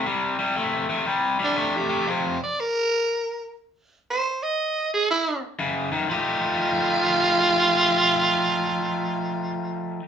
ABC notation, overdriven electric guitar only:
X:1
M:4/4
L:1/8
Q:"Swing" 1/4=119
K:Fmix
V:1 name="Overdriven electric guitar" clef=bass
[C,G,] [C,G,] [C,A,] [C,A,] [C,G,] [C,G,] [C,A,] [C,A,] | [F,,C,] z6 z | z6 [_G,,_D,] [G,,E,] | [F,A,EG]8- |
[F,A,EG]8 |]